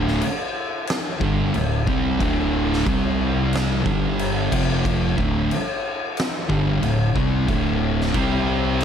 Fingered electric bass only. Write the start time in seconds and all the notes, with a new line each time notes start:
Already playing: D1
1.21 G1
1.55 D1
1.87 C2
2.21 D1
2.86 C2
3.86 G1
4.52 F1
5.18 D1
6.50 G1
6.83 D1
7.16 C2
7.48 D1
8.15 C2